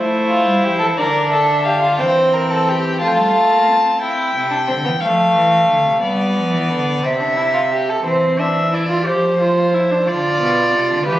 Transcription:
Already playing: A3 E4 C5
0.28 F4
0.45 G3
0.62 F3 G4
0.79 E3 A4
0.96 D3 D4 A#4 D5
1.30 A4 E5
1.64 G4 F5
1.82 F4
1.98 E3 C4 C5 G5
2.33 A#4
2.51 A4
2.69 G4
3.00 F3 A3 F4 A5
3.07 G5
3.15 G3 A5
3.34 A3
3.51 A#3
3.67 C4
3.84 C4
4.01 C4 E4 G5
4.35 C3
4.51 D4
4.67 D3 C4
4.84 E3 B3
5.00 F3 A3 F5
5.34 E3
5.67 D3
5.84 C3
6.01 G3 B3 D5
6.34 F3
6.51 E3
6.69 D3
7.02 C3 C4 E5
7.20 D4
7.36 E4
7.53 F4
7.72 G4
7.89 A4
8.04 E3 C4 C5
8.38 D4 E5
8.72 E4 D5
8.90 F4
9.05 F3 G4 C5
9.40 F4
9.74 E4
9.91 D4
10.06 D3 F4 D5
10.40 B2
10.73 C3
10.90 D3
11.06 E3 G4 B4

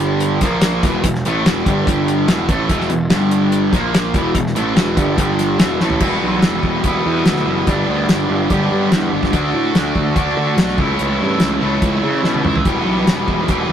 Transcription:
Already playing: G1 G2 D3 G3
0.20 closed hi-hat
0.41 A#1 A#2 F3 A#3, kick, snare, closed hi-hat
0.61 snare, closed hi-hat
0.83 E1 E2 B2 E3, kick, closed hi-hat
1.03 E1 E2 B2, kick, closed hi-hat
1.15 snare
1.25 A1 A2 E3 A3, closed hi-hat
1.45 E1 E2 B2 E3, snare, closed hi-hat
1.66 G1 G2 D3 G3, kick, closed hi-hat
1.87 G1 G2 D3 G3, kick, closed hi-hat
2.08 closed hi-hat
2.28 E1 E2 B2 E3, snare, closed hi-hat
2.48 A1 A2 E3 A3, kick, closed hi-hat
2.69 E1 E2 B2 E3, kick, closed hi-hat
2.80 snare
2.90 E1 E2 B2, closed hi-hat
3.10 G1 G2 D3 G3, snare, closed hi-hat
3.31 closed hi-hat
3.52 closed hi-hat
3.71 A#1 A#2 F3 A#3, kick, snare, closed hi-hat
3.94 snare, closed hi-hat
4.14 E1 E2 B2 E3, kick, closed hi-hat
4.34 E1 E2 B2, kick, closed hi-hat
4.46 snare
4.55 A1 A2 E3 A3, closed hi-hat
4.76 E1 E2 B2 E3, snare, closed hi-hat
4.96 G1 G2 D3 G3, kick, closed hi-hat
5.16 G1 G2 D3 G3, kick, closed hi-hat
5.39 snare, closed hi-hat
5.59 E1 E2 B2 E3, snare, closed hi-hat
5.80 A1 A2 E3 A3, snare
5.90 floor tom
6.00 E1 E2 B2 E3 G3 B3 E4, kick, crash
6.23 B1
6.42 E1, snare, closed hi-hat
6.63 E1, kick
6.84 E1 E2 B2 E3 G3 B3 E4, kick, closed hi-hat
7.06 E2
7.26 D2, snare, closed hi-hat
7.36 snare
7.47 F#1
7.66 G1 G2 D3 G3 B3 D4 G4, kick, closed hi-hat
7.89 D2
8.09 G1, snare, closed hi-hat
8.29 G1
8.50 G1 G2 D3 G3 B3 D4 G4, kick, closed hi-hat
8.71 G2
8.92 E2, snare, closed hi-hat
9.13 G1
9.23 kick, snare
9.32 D2 D3 A3 D4 F#4, kick, closed hi-hat
9.54 A2
9.74 D2, snare, closed hi-hat
9.95 D2, kick
10.15 D2 D3 A3 D4 F#4, kick, closed hi-hat
10.36 D3
10.57 B1, snare, closed hi-hat
10.68 snare
10.78 C#2 C#3 E3 A3 C#4 E4, kick
10.99 C#2, closed hi-hat
11.21 G2
11.40 C#2, snare, closed hi-hat
11.61 C#2 C#3 E3 A3 C#4 E4
11.82 C#2, kick, closed hi-hat
12.04 C#3
12.24 B2, snare
12.34 high tom
12.44 C#2, mid tom
12.56 floor tom
12.65 E1 E2 B2 E3 G3 B3 G4, kick, closed hi-hat
12.86 B1
13.07 E1, snare, closed hi-hat
13.27 E1, kick
13.48 E1 E2 B2 E3 G3 B3 G4, kick, closed hi-hat
13.69 E2

